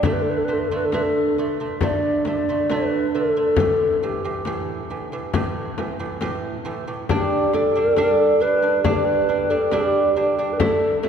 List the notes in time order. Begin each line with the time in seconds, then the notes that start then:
0.03 D3 A3 A4, frame drum
0.13 B4
0.21 A4
0.30 B4
0.38 A4
0.45 D3 B4
0.49 A3 A4
0.59 B4
0.67 D3 A4, frame drum
0.72 A3
0.76 B4
0.85 A4
0.92 D3 A3 B4, frame drum
1.01 A4
1.36 D3 A3, frame drum
1.60 D3 A3
1.81 D3 A3 D5, frame drum
2.25 D3 A3 D5, frame drum
2.48 D3 A3, frame drum
2.70 D3 A3 B4, frame drum
3.14 D3 A3 A4
3.36 D3 A3
3.56 A2 E3, frame drum
4.03 A2 E3 G4
4.24 A2 E3, frame drum
4.45 A2 E3, frame drum
4.90 A2 E3, frame drum
5.12 A2 E3
5.34 A2 E3, frame drum
5.78 A2 E3, frame drum
5.99 A2 E3, frame drum
6.21 A2 E3, frame drum
6.65 A2 E3
6.87 A2 E3
7.09 G3 D4 G4, frame drum
7.54 G3 D4 A4, frame drum
7.75 G3 D4
7.96 G3 D4, frame drum
8.40 G3 D4 B4, frame drum
8.62 G3 D4
8.83 G3 D4 G4, frame drum
9.05 B4
9.28 G3 D4, frame drum
9.49 G3 D4 A4
9.71 G3 D4 G4, frame drum
10.15 G3 D4 G4, frame drum
10.38 G3 D4
10.53 B4
10.58 A3 E4 A4, frame drum
11.01 A3 E4 A4, frame drum